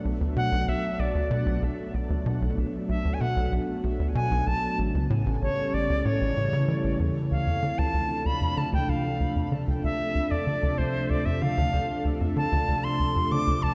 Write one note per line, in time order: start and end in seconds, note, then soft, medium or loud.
0.00 4.79 F#3 medium
0.00 4.78 A3 medium
0.00 5.80 B3 medium
0.00 4.79 D4 medium
0.00 4.79 A4 medium
0.05 0.20 B1 medium
0.21 0.36 D2 medium
0.36 0.51 B2 medium
0.36 0.70 F#5 loud
0.52 0.64 B1 loud
0.68 0.75 B1 medium
0.68 1.01 E5 medium
0.99 1.14 B1 medium
0.99 1.63 D5 medium
1.15 1.30 D2 medium
1.31 1.46 B2 loud
1.46 1.59 B1 loud
1.62 1.70 B1 medium
1.94 2.09 B1 medium
2.10 2.25 D2 medium
2.26 2.41 B2 loud
2.42 2.54 B1 loud
2.58 2.65 B1 medium
2.89 3.04 B1 medium
2.89 3.15 E5 medium
3.05 3.20 D2 medium
3.14 3.22 G#5 medium
3.21 3.36 B2 loud
3.21 3.52 F#5 loud
3.36 3.48 B1 loud
3.52 3.59 B1 medium
3.84 3.99 B1 medium
4.00 4.15 D2 medium
4.15 4.30 B2 loud
4.15 4.48 G#5 medium
4.31 4.43 B1 loud
4.47 4.54 B1 medium
4.47 4.79 A5 loud
4.79 4.94 A1 medium
4.79 7.32 C#3 medium
4.95 5.10 C#2 medium
5.10 5.25 A2 loud
5.18 7.31 G3 medium
5.18 13.74 A4 medium
5.26 5.38 A1 loud
5.42 5.49 A1 medium
5.42 5.75 C#5 loud
5.55 13.74 A3 medium
5.74 5.89 A1 medium
5.74 6.07 D5 loud
5.90 6.05 C#2 medium
5.90 9.11 E3 medium
6.05 6.20 A2 loud
6.05 7.00 C#5 loud
6.21 6.33 A1 medium
6.37 6.49 A2 medium
6.53 6.65 C#3 medium
6.68 6.80 E3 medium
6.84 6.96 A1 medium
7.00 7.12 E2 medium
7.31 7.46 D2 medium
7.31 13.74 C3 medium
7.31 7.80 F5 medium
7.47 7.62 F2 medium
7.63 7.78 D3 loud
7.72 13.74 F3 medium
7.79 7.91 D2 loud
7.79 8.28 A5 loud
7.94 8.01 D2 medium
7.99 13.74 D4 medium
8.26 8.41 D2 medium
8.26 8.59 B5 loud
8.41 8.57 F2 medium
8.57 8.73 D3 medium
8.57 8.73 A5 medium
8.73 8.85 D2 loud
8.73 8.91 G5 medium
8.89 8.96 D2 medium
8.89 9.53 F5 medium
9.20 9.35 D2 medium
9.36 9.51 F2 medium
9.52 9.67 D3 loud
9.68 9.80 D2 medium
9.84 9.91 D2 medium
9.84 10.33 E5 loud
10.15 10.30 D2 medium
10.31 10.46 F2 medium
10.31 10.79 D5 medium
10.47 10.62 D3 loud
10.63 10.75 D2 loud
10.78 10.86 D2 medium
10.78 11.11 C5 medium
11.10 11.25 D2 medium
11.10 11.27 D5 loud
11.26 11.41 F2 medium
11.26 11.43 E5 loud
11.42 11.57 D3 loud
11.42 12.05 F5 loud
11.58 11.69 D2 loud
11.73 11.81 D2 medium
12.05 12.20 D2 medium
12.21 12.36 F2 medium
12.37 12.52 D3 loud
12.37 12.86 A5 loud
12.52 12.64 D2 loud
12.68 12.75 D2 medium
12.84 13.33 C6 loud
13.00 13.15 D2 medium
13.16 13.31 F2 medium
13.32 13.47 D3 loud
13.32 13.64 D6 loud
13.47 13.59 D2 loud
13.63 13.70 D2 medium
13.63 13.74 A5 loud